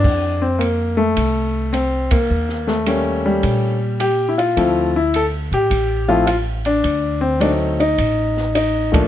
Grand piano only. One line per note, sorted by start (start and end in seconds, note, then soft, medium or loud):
0.00 0.44 D4 loud
0.42 0.61 C4 medium
0.59 0.99 A#3 medium
0.97 1.75 A3 medium
1.73 2.13 C4 medium
2.11 2.70 A#3 medium
2.67 2.85 A3 medium
2.87 3.24 G3 medium
2.87 3.74 A3 medium
2.87 3.75 A#3 medium
2.87 3.75 C#4 medium
3.26 4.03 G3 medium
4.00 4.30 G4 medium
4.29 4.38 E4 medium
4.38 4.97 F4 medium
4.57 4.91 F3 medium
4.57 4.92 A3 medium
4.57 4.92 C4 medium
4.57 4.92 E4 medium
4.96 5.15 E4 medium
5.16 5.24 A4 loud
5.54 6.12 G4 medium
6.08 6.25 F3 medium
6.08 6.25 A3 medium
6.08 6.26 C4 medium
6.08 6.26 E4 medium
6.08 6.25 F4 medium
6.27 6.35 F4 medium
6.66 7.19 D4 loud
7.21 7.39 C4 medium
7.40 7.75 F#3 soft
7.40 7.76 A3 soft
7.40 7.76 C4 soft
7.40 7.49 D4 medium
7.40 7.76 D#4 medium
7.80 8.51 D#4 medium
8.55 8.95 D#4 medium
8.92 9.08 F3 medium
8.92 9.08 A3 medium
8.92 9.08 A#3 medium
8.92 9.08 D4 medium